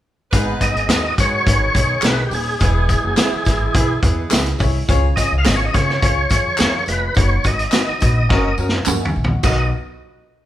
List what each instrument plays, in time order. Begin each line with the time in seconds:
0.32 upright bass G#1, grand piano G#2 D#4 G#4 B4, horn section G#3 B3 D#4 B4, kick, closed hi-hat, tambourine
0.61 grand piano D#4 G#4 B4, tonewheel organ D#5, kick, closed hi-hat, tambourine
0.73 upright bass G#1, horn section D#3 G#3 B3 G#4, closed hi-hat
0.87 upright bass D#2, horn section D#3 F#3 B3 F#4, grand piano D#4 G#4 B4, clean electric guitar G#4 B4 D#5, snare, clap, closed hi-hat, tambourine
1.18 upright bass G#2, grand piano D#4 G#4 B4, tonewheel organ C#5, kick, closed hi-hat, tambourine
1.47 upright bass G#1, grand piano D#4 G#4 B4, kick, closed hi-hat
1.74 upright bass B1, horn section D#3 G#3 B3 G#4, grand piano D#4 G#4 B4, kick, closed hi-hat, tambourine
2.02 upright bass B1, grand piano D#4 G#4 A#4, clean electric guitar G#4 B4 D#5, tonewheel organ B4, snare, clap, closed hi-hat, tambourine
2.27 upright bass D#1, tonewheel organ G4
2.31 grand piano D#4 G#4 B4, tonewheel organ G#4, open hi-hat, tambourine
2.60 upright bass E1, horn section E3 G#3 B3 G#4, grand piano E3 E4 G#4 B4, kick, closed hi-hat, tambourine
2.89 grand piano E4 G#4 B4, kick, closed hi-hat, tambourine
3.02 upright bass F#1, horn section F#3 D#4 F#4
3.16 horn section B2 E3 G#3 E4, grand piano E4 G#4 B4, clean electric guitar G#4 B4 E5, snare, clap, closed hi-hat, tambourine
3.31 muted upright bass stroke
3.45 upright bass G#1, grand piano E4 G#4 B4, kick, snare, closed hi-hat, tambourine
3.74 upright bass B1, grand piano E4 G#4 B4, kick, closed hi-hat, tambourine
4.02 upright bass E2, horn section E3 G#3 B3 G#4, grand piano E4 G#4 B4, kick, closed hi-hat, tambourine
4.31 upright bass C#2, grand piano E4 G#4 B4, clean electric guitar G#4 B4 E5, snare, clap, closed hi-hat, tambourine
4.46 closed hi-hat
4.59 upright bass C2, grand piano E4 G#4 C#5, kick, open hi-hat, tambourine
4.88 upright bass C#2, grand piano C#3 F4 G#4 C#5, kick, closed hi-hat, tambourine
5.16 grand piano F4 G#4 C#5, tonewheel organ D#5, kick, closed hi-hat, tambourine
5.32 upright bass C#2
5.38 tonewheel organ F5
5.45 upright bass G#1, grand piano F4 G#4 C#5, clean electric guitar G#4 C#5 F5, tonewheel organ D#5, snare, clap, closed hi-hat, tambourine
5.56 tonewheel organ C#5
5.65 tonewheel organ D#5
5.74 upright bass C#3, grand piano F4 G#4 C#5, tonewheel organ C#5, kick, snare, closed hi-hat, tambourine
5.89 snare
6.02 upright bass C#2, grand piano F4 G#4 C#5, kick, closed hi-hat, tambourine
6.30 upright bass F2, grand piano F4 G#4 C#5, tonewheel organ C#5, kick, closed hi-hat, tambourine
6.58 upright bass F2, grand piano F4 G#4 A#4, clean electric guitar G#4 C#5 F5, snare, clap, closed hi-hat, tambourine
6.86 upright bass F1, grand piano F4 G#4 D#5, tonewheel organ B4, closed hi-hat, tambourine
7.15 upright bass F#1, grand piano D#4 F#4 B4, tonewheel organ C#5, kick, closed hi-hat, tambourine
7.44 upright bass G#1, grand piano D#4 F#4 B4, tonewheel organ D#5, kick, closed hi-hat, tambourine
7.59 closed hi-hat
7.72 grand piano D#4 F#4 B4, clean electric guitar F#4 B4 D#5, snare, clap, closed hi-hat, tambourine
7.88 muted upright bass stroke
8.00 upright bass A#1, grand piano D#4 F#4 B4, kick, closed hi-hat, tambourine
8.29 upright bass F#1, grand piano C#4 F#4 A#4, kick, snare
8.58 upright bass F#2, grand piano C#4 F#4 A#4, tambourine
8.69 snare
8.86 upright bass D#2, clean electric guitar C#4 F#4 A#4, grand piano D#5 F#5 C#6, clap, mid tom, tambourine
9.00 grand piano E5 G#5
9.05 floor tom
9.16 upright bass A#1
9.24 floor tom
9.29 grand piano D#5 F#5
9.43 grand piano B1 D#4 F#4 B4, upright bass B1, horn section D#3 F#3 B3 F#4, clean electric guitar F#4 B4 D#5, tonewheel organ D#5, kick, tambourine, crash